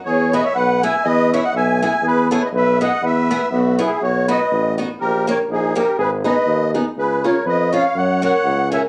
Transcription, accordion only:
X:1
M:2/4
L:1/16
Q:"Swing" 1/4=122
K:E
V:1 name="Accordion"
c2 d e f2 g2 | d2 e f g2 g2 | B2 c d e2 f2 | e4 F2 G2 |
[K:B] c2 d4 z2 | A2 c2 G2 A2 | B2 d4 z2 | B2 c2 d2 ^e2 |
f2 f4 g2 |]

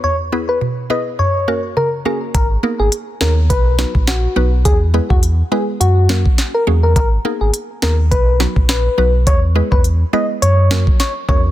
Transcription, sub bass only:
X:1
M:4/4
L:1/16
Q:"Swing 16ths" 1/4=104
K:B
V:1 name="Sub bass" clef=bass
z16 | G,,,2 z G,,, z2 D,,2 B,,,3 A,,,3 B,,,2 | E,,3 E,,3 z2 F,,4 z2 E,,2 | G,,,2 z G,,, z2 D,,2 B,,,3 A,,,3 B,,,2 |
E,,3 E,,3 z2 F,,4 z2 E,,2 |]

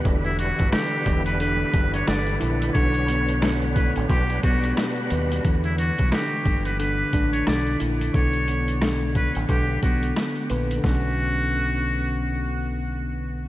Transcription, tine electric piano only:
X:1
M:4/4
L:1/8
Q:"Swing 16ths" 1/4=89
K:Bm
V:1 name="Tine electric piano" clef=bass
D, E, D,2 D, D D, E | D, B, D,2 B,, B, B,, B | D, E, D,2 D, D D, E | D, B, D,2 D, B,2 B |
[D,B,C]8 |]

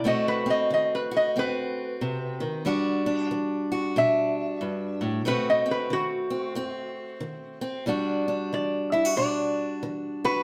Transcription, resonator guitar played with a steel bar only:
X:1
M:4/4
L:1/8
Q:"Swing" 1/4=92
K:Em
V:1 name="Resonator guitar played with a steel bar"
(3^d B d (3d B d B4- | B2 z2 e4 | (3B ^d B F6 | z2 d e d2 z B |]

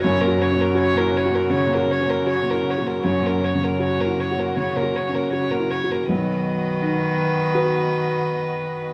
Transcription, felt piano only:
X:1
M:4/4
L:1/8
Q:1/4=80
K:B
V:1 name="Felt piano"
(3F,, F C (3F E F (3C, F C (3F E F | (3F,, C C, (3F E F (3C, F C (3F E F | B,,,2 D2 [FB]4 |]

